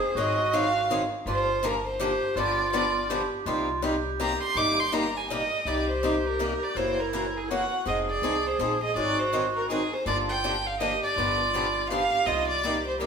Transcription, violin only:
Already playing: C5
0.17 D#5
0.54 F5
1.28 C5
1.65 A#4
1.88 C5
2.38 D5
2.73 D5
4.21 A#5
4.43 C6
4.57 D6
4.80 C6
4.94 A#5
5.17 G#5
5.31 D#5
5.67 D5
5.90 C5
6.28 A#4
6.63 D5
6.77 C5
7.00 A#4
7.37 G#4
7.51 F#5
7.88 D#5
8.11 D5
8.47 C5
8.83 D#5
8.97 D5
9.19 C5
9.57 A#4
9.71 G#4
9.93 C5
10.07 D5
10.30 G5
10.67 F5
10.81 D#5
11.03 D5
11.90 F5
12.27 D#5
12.48 D5
12.87 C5
13.01 A#4

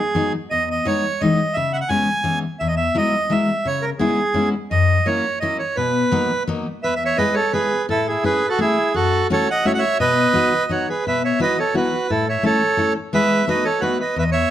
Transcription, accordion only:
Already playing: G#4
0.51 D#5
0.71 D#5
0.87 C#5
1.21 D#5
1.54 E5
1.73 E5 F#5
1.81 F#5
1.89 G#5
2.60 E5
2.68 D#5
2.77 E5
2.98 D#5
3.31 E5
3.67 C#5
3.82 A#4
3.99 G#4
4.71 D#5
5.06 C#5
5.40 D#5
5.59 C#5
5.76 B4
6.83 B4 E5
6.96 E5
7.05 C#5 E5
7.17 B4 D#5
7.34 A4 C#5
7.53 G#4 B4
7.90 E4 A4
8.07 E4 G#4
8.25 G#4 B4
8.49 F#4 A4
8.60 E4 G#4
8.95 F#4 A4
9.33 A4 C#5
9.50 D#5 F#5
9.66 C#5 E5
9.74 F#5
9.79 C#5 E5
10.00 B4 D#5
10.71 F#4 C#5
10.89 G#4 B4
11.07 B4 E5
11.24 C#5 E5
11.41 B4 D#5
11.59 A4 C#5
11.76 F#4 B4
12.10 E4 A4
12.29 C#5 E5
12.46 A4 C#5
13.14 B4 E5
13.48 B4 D#5
13.65 A4 C#5
13.80 F#4 B4
14.00 B4 D#5
14.18 B4 E5
14.22 D#5
14.32 C#5 E5

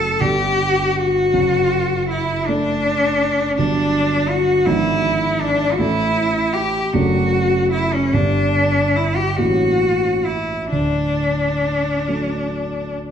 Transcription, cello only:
Already playing: A4
0.20 G4
0.97 F#4
2.09 E4
2.46 D4
3.57 D4
4.29 F#4
4.66 E4
5.40 D4
5.72 F#4
5.78 E4
6.53 G4
6.92 F#4
7.72 E4
7.94 C#4
8.14 D4
8.96 E4
9.16 G4
9.35 F#4
10.25 E4
10.71 D4

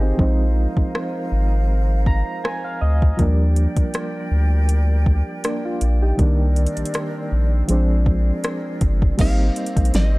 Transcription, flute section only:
Already playing: C4 G4 C5 D#5
0.19 D#4 A#4 F5
3.19 G4 A#4 D5 G5
6.18 C4 D4 A#4 D5
7.68 G#4 A#4 D5
9.19 C4 G4 C5 D#5

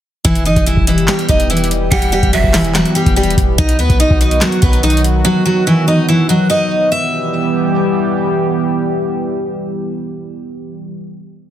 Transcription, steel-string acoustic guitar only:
0.25 E3 E4
0.46 D#4 D#5
0.67 E3 E4
0.88 E3 E4
1.08 G3 G4
1.29 D#4 D#5
1.50 E3 E4
1.92 G3 G4
2.12 G3 G4
2.33 F#3 F#4
2.54 E3 E4
2.75 F#3 F#4
2.95 G3 G4
3.16 G3 G4
3.58 D#4 D#5
3.79 B3 B4
4.00 D#4 D#5
4.21 D#4 D#5
4.41 F#3 F#4
4.62 B3 B4
4.83 D#4 D#5
5.25 F#3 F#4
5.45 F#3 F#4
5.67 E3 E4
5.88 D#4 D#5
6.08 E3 E4
6.29 F#3 F#4
6.50 D#4 D#5
6.92 E5

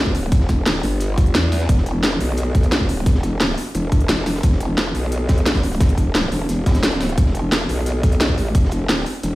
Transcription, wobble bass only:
Already playing: B1
0.32 E1
0.83 G1
1.35 E2
1.69 E1
2.21 B1
3.06 E1
3.75 E1
4.09 E1
4.43 E1
4.95 B1
5.81 E1
6.32 E1
6.49 E1
7.18 E1
7.69 B1
8.29 A#1
8.55 E1
9.23 E1

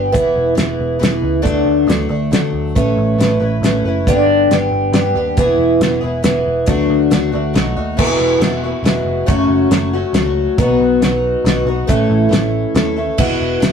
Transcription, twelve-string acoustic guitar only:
Already playing: G3 B3 D4 G4
0.12 E3 B3 E4 G#4
0.55 E3 B3 E4 G#4
0.99 E3 B3 E4 G#4
1.42 D3 F#3 A3 D4 A4
1.87 F#3 A3 D4 A4
2.09 A3 D4 A4
2.31 F#3 A3 D4 A4
2.75 A3 C#4 E4 B4
3.18 A3 C#4 E4 B4
3.40 C#4 E4 B4
3.63 A3 C#4 E4 B4
3.85 C#4 E4 B4
4.07 G2 D3 G3 B3 D4 G4
4.51 G3 B3 D4 G4
4.93 G3 B3 D4 G4
5.15 G3 B3 D4 G4
5.38 E3 B3 E4 G#4
5.82 E3 B3 E4 G#4
6.01 B3 E4 G#4
6.23 E3 B3 E4 G#4
6.67 D3 F#3 A3 D4 F#4
7.10 F#3 A3 D4 F#4
7.32 A3 D4 F#4
7.53 F#3 A3 D#4 F#4
7.76 A3 D#4 F#4
7.97 E3 G#3 B3 E4 F#4
8.41 G#3 B3 E4 F#4
8.63 B3 E4 F#4
8.84 G#3 B3 E4 F#4
9.26 F#2 C#3 F#3 A3 C#4 F#4
9.71 F#3 A3 C#4 F#4
9.93 F#3 A3 C#4 F#4
10.14 F#3 A3 C#4 F#4
10.58 B2 F#3 B3 D#4 F#4
11.02 F#3 B3 D#4 F#4
11.45 F#3 B3 D#4 F#4
11.67 B3 D#4 F#4
11.87 A2 E3 A3 C#4 E4 A4
12.29 A3 C#4 E4 A4
12.74 A3 C#4 E4 A4
12.96 A3 C#4 E4 A4
13.18 E3 G#3 B3 E4 F#4
13.60 G#3 B3 E4 F#4

